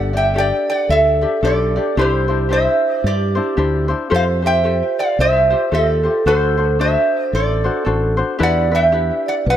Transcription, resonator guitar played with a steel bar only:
0.17 E5 G5
0.38 D5 G5
0.70 D5 F#5
0.90 A4 E5
1.45 A4 D5
1.99 G4 C5
2.53 C5 E5
2.96 D5
3.06 G4 D5
4.14 C5 F5
4.46 E5 G5
4.99 D5 F5
5.20 C5 E5
5.75 A4 D5
6.28 A4 C5
6.81 C5 E5
7.24 D5
7.35 A4 D5
8.43 D5 F#5
8.75 E5 G5
9.28 D5 F#5
9.50 B4 E5

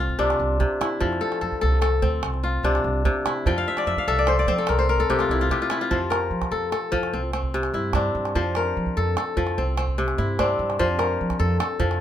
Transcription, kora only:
Already playing: C4 A4 D5
0.00 F4
0.19 C3 D4
0.60 C3
0.81 E4
1.00 F3
1.21 A4
1.41 A4
1.61 A4
1.82 A4
2.02 C4
2.43 F4
2.64 C3 D4
3.05 C3
3.26 E4
3.47 F3 G5
3.58 F5
3.68 E5
3.78 D5
3.87 E5
3.98 F5
4.08 A4 E5
4.19 D5
4.28 C5
4.39 D5
4.48 C4 C5
4.58 A4
4.69 A#4
4.79 C5
4.89 A#4
5.00 A4
5.10 C3 G4
5.20 F4
5.31 E4
5.41 F4
5.51 C3 G4
5.62 F4
5.71 E4
5.81 F4
5.91 F3 C5
6.10 A#4
6.52 A4
6.72 A4
6.92 F3
7.13 C4
7.33 C4
7.54 C3
7.74 E4
7.95 C4 D4
8.35 F3 C5
8.56 A#4
8.97 A4
9.18 A4
9.37 F3
9.58 C4
9.78 C4
9.98 C3
10.18 E4
10.39 C4 D4
10.79 F3 C5
10.99 A#4
11.39 A4
11.60 A4
11.80 F3

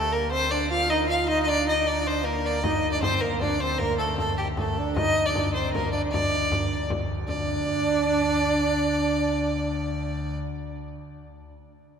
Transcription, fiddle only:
Already playing: A4
0.13 A#4
0.31 C5
0.51 D5
0.70 F5
0.90 D#5
1.09 F5
1.29 D#5
1.43 D#5
1.48 D5
1.69 D#5
1.87 D5
2.07 C5
2.25 A#4
2.46 D5
2.64 D#5
2.92 D5
3.02 C5
3.21 A#4
3.41 D5
3.60 C5
3.79 A#4
3.98 A4
4.17 A4
4.38 G4
4.58 A4
4.96 D#5
5.26 D5
5.54 C5
5.73 A#4
5.92 D5
6.11 D5
7.28 D5

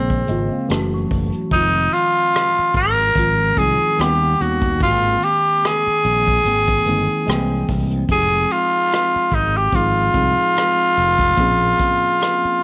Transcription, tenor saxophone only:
Already playing: C4
1.52 D#4
1.93 F4
2.76 A#4
3.59 G#4
4.00 G4
4.41 F#4
4.83 F4
5.24 G4
5.66 G#4
8.12 G#4
8.52 F4
9.35 D#4
9.57 G4
9.75 F4

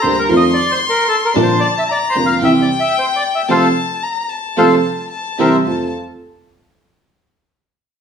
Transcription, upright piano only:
0.03 D2 D3 G3 A#3 G4
0.29 F2 D#3 F3 A3 C4 F4
1.35 A#1 A#2 D3 F3 A#3 F4
2.15 F1 F2 D3 F3 A#3 F4
2.42 C2 C3 E3 G3 E4
3.49 C3 F3 A3
4.57 C3 F3 A3
5.38 C3 E3 G3
5.66 F2 A3 C4 F4

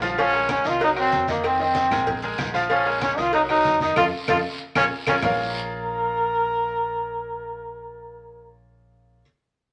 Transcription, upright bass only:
Already playing: A#1
0.65 C2
1.12 F2
1.91 A#1
2.39 A#1
3.18 C2
3.65 F2
3.97 F2
4.28 F2
4.75 A#1
5.07 A#1
5.23 A#1

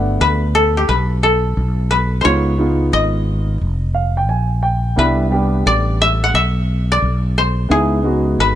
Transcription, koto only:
Already playing: G4
0.21 B4
0.55 A4
0.77 G4
0.89 B4
1.23 A4
1.91 B4
2.21 C5 C#5
2.93 D#5
4.99 B4
5.67 D5
6.02 E5
6.24 F#5
6.35 E5
6.92 D5
7.38 C5
7.71 G#4
8.40 B4

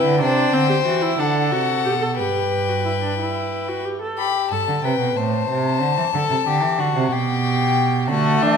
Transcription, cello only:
0.04 D3
0.20 C3
0.53 D3
0.85 E3
1.19 D3
1.52 C3
1.85 B2
2.19 G2
4.51 G2
4.68 D3
4.84 C3
5.00 B2
5.16 A2
5.49 C3
5.81 D3
5.98 E3
6.14 D3
6.30 C3
6.46 D3
6.63 E3
6.78 D3
6.95 C3
7.11 B2
8.09 D3
8.42 E3

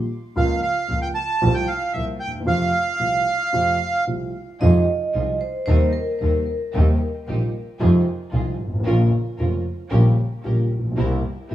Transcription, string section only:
4.61 D#4 F4 G#4
5.13 D#4 F4 G#4
5.68 C4 D#4 A#4
6.21 C4 D#4 A#4
6.74 C4 D#4 G4
7.28 C4 D#4 G4
7.80 D#4 F4 G#4
8.32 D#4 F4 G#4
8.85 C#4 F4 A#4
9.38 C#4 F4 A#4
9.91 C#4 G4 A#4
10.43 C#4 G4 A#4
10.97 C4 E4 A#4
11.50 C4 E4 A#4

